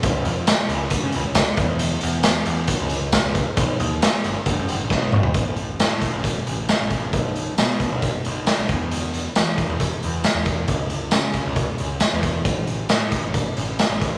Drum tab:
HH |x-x-x-x-x-x-x-x-|x-x-x-x-x-x-x-x-|x-x-x-x-x-x-----|x-x-x-x-x-x-x-x-|
TB |----x-------x---|----x-------x---|----x-----------|----x-------x---|
SD |----o-------o---|----o-------o---|----o-------o---|----o-------o---|
T2 |----------------|----------------|--------------o-|----------------|
FT |----------------|----------------|---------------o|----------------|
BD |o-------o---o-o-|--------o---o-o-|o-------o---o---|o-----o-o-----o-|

HH |x-x-x-x-x-x-x-x-|x-x-x-x-x-x-x-x-|x-x-x-x-x-x-x-x-|x-x-x-x-x-x-x-x-|
TB |----x-------x---|----x-------x---|----x-------x---|----x-------x---|
SD |----o-------o---|----o-------o---|----o-------o---|----o-------o---|
T2 |----------------|----------------|----------------|----------------|
FT |----------------|----------------|----------------|----------------|
BD |o-----o-o-----o-|------o-o-----o-|o-----o-o-----o-|o-----o-o-----o-|